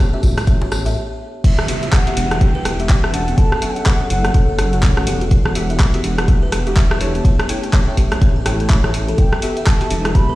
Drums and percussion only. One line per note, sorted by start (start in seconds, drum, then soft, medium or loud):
0.14 djembe tone medium
0.23 kick medium
0.23 closed hi-hat soft
0.23 tambourine medium
0.23 djembe bass medium
0.37 cross-stick medium
0.37 closed hi-hat soft
0.37 tambourine soft
0.37 djembe tone medium
0.47 kick loud
0.47 closed hi-hat medium
0.47 tambourine soft
0.62 djembe slap loud
0.62 djembe tone medium
0.72 cross-stick medium
0.72 tambourine medium
0.85 closed hi-hat soft
0.85 tambourine soft
0.85 djembe tone medium
1.44 kick loud
1.44 closed hi-hat medium
1.44 crash loud
1.59 cross-stick medium
1.68 open hi-hat loud
1.83 closed hi-hat soft
1.93 kick loud
1.93 cross-stick medium
1.93 clap loud
1.93 closed hi-hat medium
2.07 open hi-hat medium
2.17 open hi-hat loud
2.31 cross-stick medium
2.31 closed hi-hat soft
2.41 kick loud
2.41 closed hi-hat medium
2.65 cross-stick medium
2.65 open hi-hat loud
2.80 closed hi-hat soft
2.89 kick loud
2.89 clap loud
2.89 closed hi-hat medium
3.04 cross-stick medium
3.14 open hi-hat medium
3.28 closed hi-hat soft
3.38 kick loud
3.38 closed hi-hat medium
3.52 cross-stick medium
3.62 open hi-hat loud
3.76 closed hi-hat soft
3.86 kick loud
3.86 cross-stick medium
3.86 clap loud
3.86 closed hi-hat medium
4.10 open hi-hat medium
4.24 cross-stick medium
4.24 closed hi-hat soft
4.34 kick loud
4.34 closed hi-hat medium
4.59 cross-stick medium
4.59 open hi-hat loud
4.73 closed hi-hat soft
4.83 kick loud
4.83 clap medium
4.83 closed hi-hat medium
4.97 cross-stick medium
5.07 open hi-hat loud
5.21 closed hi-hat soft
5.31 kick loud
5.31 closed hi-hat medium
5.45 cross-stick medium
5.55 open hi-hat loud
5.70 closed hi-hat soft
5.80 kick loud
5.80 cross-stick medium
5.80 clap medium
5.80 closed hi-hat medium
5.94 open hi-hat medium
6.04 open hi-hat loud
6.18 cross-stick loud
6.18 closed hi-hat soft
6.28 kick loud
6.28 closed hi-hat medium
6.52 cross-stick medium
6.52 open hi-hat loud
6.67 closed hi-hat soft
6.76 kick loud
6.76 clap medium
6.76 closed hi-hat medium
6.91 cross-stick loud
7.01 open hi-hat medium
7.15 closed hi-hat soft
7.25 kick loud
7.25 closed hi-hat medium
7.39 cross-stick loud
7.39 closed hi-hat soft
7.49 open hi-hat loud
7.64 closed hi-hat soft
7.73 kick loud
7.73 cross-stick medium
7.73 clap loud
7.73 closed hi-hat medium
7.97 kick medium
7.97 open hi-hat medium
8.12 cross-stick loud
8.12 closed hi-hat soft
8.21 kick loud
8.21 closed hi-hat medium
8.46 cross-stick medium
8.46 open hi-hat medium
8.60 closed hi-hat soft
8.70 kick loud
8.70 clap loud
8.70 closed hi-hat medium
8.84 cross-stick medium
8.94 open hi-hat medium
9.08 closed hi-hat soft
9.18 kick loud
9.18 closed hi-hat medium
9.33 cross-stick medium
9.42 open hi-hat medium
9.57 closed hi-hat soft
9.67 kick loud
9.67 cross-stick medium
9.67 clap loud
9.67 closed hi-hat medium
9.81 open hi-hat medium
9.90 open hi-hat medium
10.05 cross-stick loud
10.05 closed hi-hat soft
10.15 kick loud
10.15 closed hi-hat medium